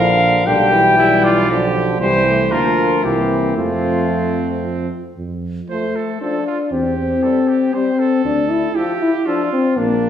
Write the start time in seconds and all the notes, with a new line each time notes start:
Already playing: A#1 D3 F3 A#4 F5
0.46 B1 D3 G3 G4 G5
0.73 E3
0.98 G3 E4
1.23 F4 D5
1.50 D3 F3 G4
2.00 C2 E3 G3 G4 C5
2.26 A3
2.51 D2 F3 A#3 F4 A#4
3.04 C2 E3 A#3 C4 G4
3.56 F2 F3 A3 C4 F4
5.17 F2
5.69 F3 A3 C5
5.96 A4
6.21 F3 D4 A4 C5
6.47 F4
6.71 E2 C4 G4
6.97 C4
7.23 G3 A4 C5
7.48 G4
7.74 G3 C4 C5
7.99 A4
8.25 D2 D4
8.50 E4
8.75 F3 F4 G4 A4
9.02 E4
9.26 F3 D4 F4 A4
9.53 C4
9.76 A#1 A#3 D4